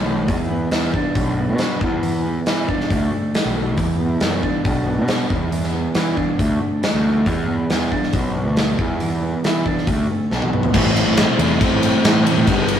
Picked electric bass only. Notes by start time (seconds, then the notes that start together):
Already playing: B1
0.29 E2
0.71 E2
1.15 B1
1.49 B2
1.82 E2
2.48 E3
2.91 D2
3.46 B1
3.78 E2
4.22 F#2
4.65 B1
4.98 B2
5.31 E2
5.96 E3
6.39 D2
6.94 D2
7.27 E2
7.71 E2
8.13 B1
8.47 D2
8.79 E2
9.45 E3
9.87 D2
10.32 B1
10.44 B1
10.73 A1
11.07 A1
11.39 E2
11.72 A1
12.05 A2
12.37 A2
12.47 G1